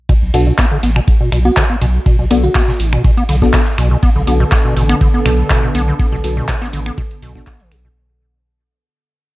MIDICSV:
0, 0, Header, 1, 7, 480
1, 0, Start_track
1, 0, Key_signature, 2, "minor"
1, 0, Tempo, 491803
1, 91, Time_signature, 4, 2, 24, 8
1, 9132, End_track
2, 0, Start_track
2, 0, Title_t, "FM electric piano"
2, 0, Program_c, 0, 5
2, 1417, Note_on_c, 0, 66, 82
2, 1568, Note_off_c, 0, 66, 0
2, 2377, Note_on_c, 0, 66, 85
2, 2857, Note_off_c, 0, 66, 0
2, 9132, End_track
3, 0, Start_track
3, 0, Title_t, "Synth stab"
3, 0, Program_c, 1, 62
3, 331, Note_on_c, 1, 59, 76
3, 331, Note_on_c, 1, 62, 71
3, 331, Note_on_c, 1, 66, 75
3, 331, Note_on_c, 1, 69, 89
3, 432, Note_off_c, 1, 69, 0
3, 433, Note_off_c, 1, 59, 0
3, 433, Note_off_c, 1, 62, 0
3, 433, Note_off_c, 1, 66, 0
3, 2251, Note_on_c, 1, 59, 83
3, 2251, Note_on_c, 1, 62, 79
3, 2251, Note_on_c, 1, 66, 78
3, 2251, Note_on_c, 1, 69, 89
3, 2353, Note_off_c, 1, 59, 0
3, 2353, Note_off_c, 1, 62, 0
3, 2353, Note_off_c, 1, 66, 0
3, 2353, Note_off_c, 1, 69, 0
3, 3338, Note_on_c, 1, 59, 88
3, 3338, Note_on_c, 1, 62, 84
3, 3338, Note_on_c, 1, 66, 84
3, 3338, Note_on_c, 1, 69, 102
3, 3487, Note_off_c, 1, 59, 0
3, 3487, Note_off_c, 1, 62, 0
3, 3487, Note_off_c, 1, 66, 0
3, 3487, Note_off_c, 1, 69, 0
3, 4171, Note_on_c, 1, 59, 78
3, 4171, Note_on_c, 1, 62, 74
3, 4171, Note_on_c, 1, 66, 74
3, 4171, Note_on_c, 1, 69, 92
3, 4272, Note_off_c, 1, 59, 0
3, 4272, Note_off_c, 1, 62, 0
3, 4272, Note_off_c, 1, 66, 0
3, 4272, Note_off_c, 1, 69, 0
3, 6091, Note_on_c, 1, 59, 88
3, 6091, Note_on_c, 1, 62, 82
3, 6091, Note_on_c, 1, 66, 78
3, 6091, Note_on_c, 1, 69, 98
3, 6192, Note_off_c, 1, 69, 0
3, 6193, Note_off_c, 1, 59, 0
3, 6193, Note_off_c, 1, 62, 0
3, 6193, Note_off_c, 1, 66, 0
3, 7177, Note_on_c, 1, 59, 93
3, 7177, Note_on_c, 1, 66, 83
3, 7177, Note_on_c, 1, 69, 102
3, 7178, Note_on_c, 1, 62, 87
3, 7327, Note_off_c, 1, 59, 0
3, 7327, Note_off_c, 1, 62, 0
3, 7327, Note_off_c, 1, 66, 0
3, 7327, Note_off_c, 1, 69, 0
3, 9132, End_track
4, 0, Start_track
4, 0, Title_t, "Analog synth pad"
4, 0, Program_c, 2, 89
4, 3931, Note_on_c, 2, 50, 81
4, 3931, Note_on_c, 2, 59, 73
4, 3931, Note_on_c, 2, 69, 84
4, 7732, Note_off_c, 2, 59, 0
4, 7733, Note_off_c, 2, 50, 0
4, 7733, Note_off_c, 2, 69, 0
4, 9132, End_track
5, 0, Start_track
5, 0, Title_t, "Acid bass"
5, 0, Program_c, 3, 38
5, 90, Note_on_c, 3, 47, 92
5, 132, Note_off_c, 3, 47, 0
5, 331, Note_on_c, 3, 47, 71
5, 436, Note_off_c, 3, 47, 0
5, 458, Note_on_c, 3, 47, 72
5, 520, Note_off_c, 3, 47, 0
5, 571, Note_on_c, 3, 59, 95
5, 641, Note_off_c, 3, 59, 0
5, 698, Note_on_c, 3, 50, 74
5, 760, Note_off_c, 3, 50, 0
5, 811, Note_on_c, 3, 59, 74
5, 881, Note_off_c, 3, 59, 0
5, 938, Note_on_c, 3, 47, 96
5, 975, Note_off_c, 3, 47, 0
5, 1177, Note_on_c, 3, 47, 75
5, 1271, Note_off_c, 3, 47, 0
5, 1290, Note_on_c, 3, 47, 72
5, 1360, Note_off_c, 3, 47, 0
5, 1417, Note_on_c, 3, 59, 97
5, 1480, Note_off_c, 3, 59, 0
5, 1530, Note_on_c, 3, 50, 81
5, 1600, Note_off_c, 3, 50, 0
5, 1657, Note_on_c, 3, 59, 75
5, 1720, Note_off_c, 3, 59, 0
5, 1771, Note_on_c, 3, 47, 95
5, 1813, Note_off_c, 3, 47, 0
5, 2010, Note_on_c, 3, 47, 76
5, 2115, Note_off_c, 3, 47, 0
5, 2137, Note_on_c, 3, 47, 77
5, 2200, Note_off_c, 3, 47, 0
5, 2251, Note_on_c, 3, 59, 95
5, 2321, Note_off_c, 3, 59, 0
5, 2378, Note_on_c, 3, 50, 75
5, 2440, Note_off_c, 3, 50, 0
5, 2491, Note_on_c, 3, 59, 79
5, 2561, Note_off_c, 3, 59, 0
5, 2617, Note_on_c, 3, 47, 100
5, 2655, Note_off_c, 3, 47, 0
5, 2857, Note_on_c, 3, 47, 75
5, 2951, Note_off_c, 3, 47, 0
5, 2970, Note_on_c, 3, 47, 80
5, 3040, Note_off_c, 3, 47, 0
5, 3097, Note_on_c, 3, 59, 101
5, 3160, Note_off_c, 3, 59, 0
5, 3211, Note_on_c, 3, 50, 76
5, 3281, Note_off_c, 3, 50, 0
5, 3338, Note_on_c, 3, 59, 75
5, 3400, Note_off_c, 3, 59, 0
5, 3451, Note_on_c, 3, 47, 104
5, 3493, Note_off_c, 3, 47, 0
5, 3691, Note_on_c, 3, 47, 72
5, 3796, Note_off_c, 3, 47, 0
5, 3818, Note_on_c, 3, 47, 75
5, 3880, Note_off_c, 3, 47, 0
5, 3931, Note_on_c, 3, 59, 92
5, 4001, Note_off_c, 3, 59, 0
5, 4057, Note_on_c, 3, 50, 77
5, 4120, Note_off_c, 3, 50, 0
5, 4170, Note_on_c, 3, 59, 74
5, 4240, Note_off_c, 3, 59, 0
5, 4297, Note_on_c, 3, 47, 100
5, 4335, Note_off_c, 3, 47, 0
5, 4537, Note_on_c, 3, 47, 74
5, 4631, Note_off_c, 3, 47, 0
5, 4651, Note_on_c, 3, 47, 75
5, 4721, Note_off_c, 3, 47, 0
5, 4777, Note_on_c, 3, 59, 97
5, 4840, Note_off_c, 3, 59, 0
5, 4891, Note_on_c, 3, 50, 79
5, 4961, Note_off_c, 3, 50, 0
5, 5018, Note_on_c, 3, 59, 79
5, 5080, Note_off_c, 3, 59, 0
5, 5131, Note_on_c, 3, 47, 98
5, 5173, Note_off_c, 3, 47, 0
5, 5371, Note_on_c, 3, 47, 84
5, 5476, Note_off_c, 3, 47, 0
5, 5498, Note_on_c, 3, 47, 77
5, 5560, Note_off_c, 3, 47, 0
5, 5611, Note_on_c, 3, 59, 95
5, 5681, Note_off_c, 3, 59, 0
5, 5738, Note_on_c, 3, 50, 73
5, 5800, Note_off_c, 3, 50, 0
5, 5850, Note_on_c, 3, 59, 80
5, 5920, Note_off_c, 3, 59, 0
5, 5978, Note_on_c, 3, 47, 109
5, 6015, Note_off_c, 3, 47, 0
5, 6218, Note_on_c, 3, 47, 76
5, 6311, Note_off_c, 3, 47, 0
5, 6458, Note_on_c, 3, 59, 97
5, 6520, Note_off_c, 3, 59, 0
5, 6571, Note_on_c, 3, 50, 75
5, 6641, Note_off_c, 3, 50, 0
5, 6698, Note_on_c, 3, 59, 76
5, 6760, Note_off_c, 3, 59, 0
5, 6811, Note_on_c, 3, 47, 98
5, 6853, Note_off_c, 3, 47, 0
5, 7051, Note_on_c, 3, 47, 77
5, 7156, Note_off_c, 3, 47, 0
5, 7178, Note_on_c, 3, 47, 104
5, 7240, Note_off_c, 3, 47, 0
5, 7292, Note_on_c, 3, 59, 84
5, 7418, Note_on_c, 3, 52, 81
5, 7433, Note_off_c, 3, 59, 0
5, 7532, Note_on_c, 3, 47, 72
5, 7547, Note_off_c, 3, 52, 0
5, 7573, Note_off_c, 3, 47, 0
5, 7658, Note_on_c, 3, 47, 77
5, 7695, Note_off_c, 3, 47, 0
5, 9132, End_track
6, 0, Start_track
6, 0, Title_t, "Sub bass"
6, 0, Program_c, 4, 38
6, 217, Note_on_c, 4, 35, 97
6, 296, Note_off_c, 4, 35, 0
6, 331, Note_on_c, 4, 35, 90
6, 501, Note_off_c, 4, 35, 0
6, 810, Note_on_c, 4, 33, 81
6, 981, Note_off_c, 4, 33, 0
6, 1291, Note_on_c, 4, 35, 93
6, 1461, Note_off_c, 4, 35, 0
6, 1771, Note_on_c, 4, 35, 79
6, 1941, Note_off_c, 4, 35, 0
6, 2138, Note_on_c, 4, 35, 95
6, 2216, Note_off_c, 4, 35, 0
6, 2251, Note_on_c, 4, 35, 87
6, 2421, Note_off_c, 4, 35, 0
6, 2731, Note_on_c, 4, 33, 78
6, 2901, Note_off_c, 4, 33, 0
6, 3211, Note_on_c, 4, 35, 92
6, 3381, Note_off_c, 4, 35, 0
6, 3691, Note_on_c, 4, 35, 80
6, 3861, Note_off_c, 4, 35, 0
6, 4058, Note_on_c, 4, 35, 99
6, 4136, Note_off_c, 4, 35, 0
6, 4172, Note_on_c, 4, 35, 90
6, 4341, Note_off_c, 4, 35, 0
6, 4651, Note_on_c, 4, 33, 82
6, 4821, Note_off_c, 4, 33, 0
6, 5131, Note_on_c, 4, 35, 95
6, 5301, Note_off_c, 4, 35, 0
6, 5611, Note_on_c, 4, 35, 88
6, 5781, Note_off_c, 4, 35, 0
6, 5977, Note_on_c, 4, 35, 98
6, 6056, Note_off_c, 4, 35, 0
6, 6090, Note_on_c, 4, 35, 96
6, 6261, Note_off_c, 4, 35, 0
6, 6571, Note_on_c, 4, 33, 83
6, 6741, Note_off_c, 4, 33, 0
6, 7051, Note_on_c, 4, 35, 78
6, 7221, Note_off_c, 4, 35, 0
6, 7531, Note_on_c, 4, 35, 86
6, 7701, Note_off_c, 4, 35, 0
6, 9132, End_track
7, 0, Start_track
7, 0, Title_t, "Drums"
7, 91, Note_on_c, 9, 36, 107
7, 91, Note_on_c, 9, 51, 78
7, 189, Note_off_c, 9, 36, 0
7, 189, Note_off_c, 9, 51, 0
7, 331, Note_on_c, 9, 46, 99
7, 331, Note_on_c, 9, 51, 62
7, 429, Note_off_c, 9, 46, 0
7, 429, Note_off_c, 9, 51, 0
7, 569, Note_on_c, 9, 39, 110
7, 571, Note_on_c, 9, 36, 102
7, 571, Note_on_c, 9, 38, 108
7, 571, Note_on_c, 9, 51, 79
7, 667, Note_off_c, 9, 39, 0
7, 669, Note_off_c, 9, 36, 0
7, 669, Note_off_c, 9, 38, 0
7, 669, Note_off_c, 9, 51, 0
7, 811, Note_on_c, 9, 46, 84
7, 811, Note_on_c, 9, 51, 64
7, 909, Note_off_c, 9, 46, 0
7, 909, Note_off_c, 9, 51, 0
7, 938, Note_on_c, 9, 26, 50
7, 1035, Note_off_c, 9, 26, 0
7, 1051, Note_on_c, 9, 36, 108
7, 1051, Note_on_c, 9, 51, 82
7, 1149, Note_off_c, 9, 36, 0
7, 1149, Note_off_c, 9, 51, 0
7, 1291, Note_on_c, 9, 26, 56
7, 1291, Note_on_c, 9, 46, 96
7, 1291, Note_on_c, 9, 51, 63
7, 1389, Note_off_c, 9, 26, 0
7, 1389, Note_off_c, 9, 46, 0
7, 1389, Note_off_c, 9, 51, 0
7, 1529, Note_on_c, 9, 39, 119
7, 1531, Note_on_c, 9, 36, 104
7, 1531, Note_on_c, 9, 38, 110
7, 1531, Note_on_c, 9, 51, 81
7, 1627, Note_off_c, 9, 39, 0
7, 1629, Note_off_c, 9, 36, 0
7, 1629, Note_off_c, 9, 38, 0
7, 1629, Note_off_c, 9, 51, 0
7, 1771, Note_on_c, 9, 46, 86
7, 1772, Note_on_c, 9, 51, 62
7, 1869, Note_off_c, 9, 46, 0
7, 1869, Note_off_c, 9, 51, 0
7, 2011, Note_on_c, 9, 36, 114
7, 2011, Note_on_c, 9, 51, 77
7, 2109, Note_off_c, 9, 36, 0
7, 2109, Note_off_c, 9, 51, 0
7, 2251, Note_on_c, 9, 46, 100
7, 2252, Note_on_c, 9, 51, 66
7, 2349, Note_off_c, 9, 46, 0
7, 2349, Note_off_c, 9, 51, 0
7, 2489, Note_on_c, 9, 39, 114
7, 2491, Note_on_c, 9, 36, 107
7, 2491, Note_on_c, 9, 38, 112
7, 2491, Note_on_c, 9, 51, 85
7, 2587, Note_off_c, 9, 39, 0
7, 2589, Note_off_c, 9, 36, 0
7, 2589, Note_off_c, 9, 38, 0
7, 2589, Note_off_c, 9, 51, 0
7, 2618, Note_on_c, 9, 38, 37
7, 2716, Note_off_c, 9, 38, 0
7, 2731, Note_on_c, 9, 46, 89
7, 2731, Note_on_c, 9, 51, 66
7, 2828, Note_off_c, 9, 46, 0
7, 2829, Note_off_c, 9, 51, 0
7, 2857, Note_on_c, 9, 26, 55
7, 2955, Note_off_c, 9, 26, 0
7, 2971, Note_on_c, 9, 36, 120
7, 2972, Note_on_c, 9, 51, 82
7, 3069, Note_off_c, 9, 36, 0
7, 3069, Note_off_c, 9, 51, 0
7, 3098, Note_on_c, 9, 51, 39
7, 3196, Note_off_c, 9, 51, 0
7, 3211, Note_on_c, 9, 46, 102
7, 3211, Note_on_c, 9, 51, 66
7, 3308, Note_off_c, 9, 46, 0
7, 3309, Note_off_c, 9, 51, 0
7, 3338, Note_on_c, 9, 36, 61
7, 3338, Note_on_c, 9, 38, 40
7, 3435, Note_off_c, 9, 36, 0
7, 3436, Note_off_c, 9, 38, 0
7, 3449, Note_on_c, 9, 39, 116
7, 3451, Note_on_c, 9, 36, 114
7, 3451, Note_on_c, 9, 38, 113
7, 3451, Note_on_c, 9, 51, 86
7, 3547, Note_off_c, 9, 39, 0
7, 3548, Note_off_c, 9, 36, 0
7, 3549, Note_off_c, 9, 38, 0
7, 3549, Note_off_c, 9, 51, 0
7, 3578, Note_on_c, 9, 51, 40
7, 3675, Note_off_c, 9, 51, 0
7, 3691, Note_on_c, 9, 26, 58
7, 3691, Note_on_c, 9, 38, 45
7, 3691, Note_on_c, 9, 46, 90
7, 3691, Note_on_c, 9, 51, 62
7, 3789, Note_off_c, 9, 26, 0
7, 3789, Note_off_c, 9, 38, 0
7, 3789, Note_off_c, 9, 46, 0
7, 3789, Note_off_c, 9, 51, 0
7, 3931, Note_on_c, 9, 36, 111
7, 3931, Note_on_c, 9, 51, 87
7, 4028, Note_off_c, 9, 36, 0
7, 4029, Note_off_c, 9, 51, 0
7, 4171, Note_on_c, 9, 46, 105
7, 4172, Note_on_c, 9, 51, 64
7, 4268, Note_off_c, 9, 46, 0
7, 4269, Note_off_c, 9, 51, 0
7, 4409, Note_on_c, 9, 39, 113
7, 4411, Note_on_c, 9, 36, 113
7, 4411, Note_on_c, 9, 38, 116
7, 4411, Note_on_c, 9, 51, 84
7, 4506, Note_off_c, 9, 39, 0
7, 4508, Note_off_c, 9, 36, 0
7, 4509, Note_off_c, 9, 38, 0
7, 4509, Note_off_c, 9, 51, 0
7, 4651, Note_on_c, 9, 46, 91
7, 4651, Note_on_c, 9, 51, 65
7, 4748, Note_off_c, 9, 46, 0
7, 4749, Note_off_c, 9, 51, 0
7, 4778, Note_on_c, 9, 26, 53
7, 4875, Note_off_c, 9, 26, 0
7, 4891, Note_on_c, 9, 36, 118
7, 4891, Note_on_c, 9, 51, 84
7, 4988, Note_off_c, 9, 36, 0
7, 4989, Note_off_c, 9, 51, 0
7, 5131, Note_on_c, 9, 26, 60
7, 5131, Note_on_c, 9, 46, 104
7, 5131, Note_on_c, 9, 51, 65
7, 5228, Note_off_c, 9, 26, 0
7, 5228, Note_off_c, 9, 46, 0
7, 5229, Note_off_c, 9, 51, 0
7, 5369, Note_on_c, 9, 39, 120
7, 5371, Note_on_c, 9, 36, 116
7, 5371, Note_on_c, 9, 38, 109
7, 5371, Note_on_c, 9, 51, 85
7, 5466, Note_off_c, 9, 39, 0
7, 5468, Note_off_c, 9, 36, 0
7, 5468, Note_off_c, 9, 38, 0
7, 5468, Note_off_c, 9, 51, 0
7, 5610, Note_on_c, 9, 46, 87
7, 5611, Note_on_c, 9, 51, 63
7, 5708, Note_off_c, 9, 46, 0
7, 5709, Note_off_c, 9, 51, 0
7, 5851, Note_on_c, 9, 36, 123
7, 5851, Note_on_c, 9, 51, 85
7, 5948, Note_off_c, 9, 36, 0
7, 5949, Note_off_c, 9, 51, 0
7, 6091, Note_on_c, 9, 46, 107
7, 6091, Note_on_c, 9, 51, 69
7, 6188, Note_off_c, 9, 46, 0
7, 6188, Note_off_c, 9, 51, 0
7, 6329, Note_on_c, 9, 39, 110
7, 6331, Note_on_c, 9, 36, 117
7, 6331, Note_on_c, 9, 38, 112
7, 6331, Note_on_c, 9, 51, 88
7, 6426, Note_off_c, 9, 39, 0
7, 6428, Note_off_c, 9, 36, 0
7, 6429, Note_off_c, 9, 38, 0
7, 6429, Note_off_c, 9, 51, 0
7, 6458, Note_on_c, 9, 38, 37
7, 6555, Note_off_c, 9, 38, 0
7, 6571, Note_on_c, 9, 46, 91
7, 6571, Note_on_c, 9, 51, 68
7, 6669, Note_off_c, 9, 46, 0
7, 6669, Note_off_c, 9, 51, 0
7, 6697, Note_on_c, 9, 26, 59
7, 6795, Note_off_c, 9, 26, 0
7, 6811, Note_on_c, 9, 36, 123
7, 6811, Note_on_c, 9, 51, 89
7, 6908, Note_off_c, 9, 36, 0
7, 6909, Note_off_c, 9, 51, 0
7, 6937, Note_on_c, 9, 51, 43
7, 7035, Note_off_c, 9, 51, 0
7, 7051, Note_on_c, 9, 46, 104
7, 7051, Note_on_c, 9, 51, 66
7, 7148, Note_off_c, 9, 46, 0
7, 7149, Note_off_c, 9, 51, 0
7, 7177, Note_on_c, 9, 36, 63
7, 7178, Note_on_c, 9, 38, 40
7, 7275, Note_off_c, 9, 36, 0
7, 7275, Note_off_c, 9, 38, 0
7, 7289, Note_on_c, 9, 39, 116
7, 7291, Note_on_c, 9, 36, 113
7, 7291, Note_on_c, 9, 38, 116
7, 7291, Note_on_c, 9, 51, 87
7, 7387, Note_off_c, 9, 39, 0
7, 7388, Note_off_c, 9, 36, 0
7, 7389, Note_off_c, 9, 38, 0
7, 7389, Note_off_c, 9, 51, 0
7, 7418, Note_on_c, 9, 51, 41
7, 7515, Note_off_c, 9, 51, 0
7, 7531, Note_on_c, 9, 26, 65
7, 7531, Note_on_c, 9, 38, 46
7, 7531, Note_on_c, 9, 46, 88
7, 7531, Note_on_c, 9, 51, 66
7, 7628, Note_off_c, 9, 26, 0
7, 7628, Note_off_c, 9, 46, 0
7, 7629, Note_off_c, 9, 38, 0
7, 7629, Note_off_c, 9, 51, 0
7, 9132, End_track
0, 0, End_of_file